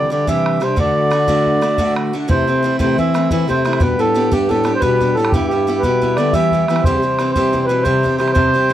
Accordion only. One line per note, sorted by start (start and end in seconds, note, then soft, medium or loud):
0.00 0.10 D5 medium
0.12 0.28 D5 medium
0.29 0.63 E5 medium
0.63 0.79 C5 medium
0.80 1.94 D5 medium
2.30 2.77 C5 medium
2.81 2.97 C5 medium
2.98 3.30 E5 medium
3.31 3.48 E5 medium
3.49 3.82 C5 medium
3.81 4.00 B4 medium
3.99 4.33 A4 medium
4.31 4.50 G4 medium
4.49 4.73 A4 medium
4.75 4.82 C5 medium
4.79 5.16 B4 medium
5.14 5.32 A4 medium
5.29 5.46 G4 medium
5.48 5.83 G4 medium
5.79 6.17 B4 medium
6.16 6.34 D5 medium
6.33 6.65 E5 loud
6.67 6.84 E5 medium
6.83 7.31 C5 medium
7.32 7.65 C5 medium
7.66 7.84 B4 medium
7.83 8.16 C5 medium
8.17 8.31 C5 medium
8.32 8.73 C5 loud